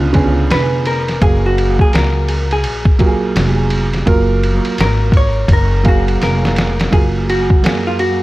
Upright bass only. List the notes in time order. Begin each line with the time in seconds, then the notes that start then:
Already playing: C#2
0.50 F1
1.22 F#1
1.93 C#2
2.65 A#1
3.36 F1
4.07 F#1
4.65 muted upright bass stroke
4.79 G#1
5.49 F#1
6.22 F1
6.93 F#1
7.64 F#2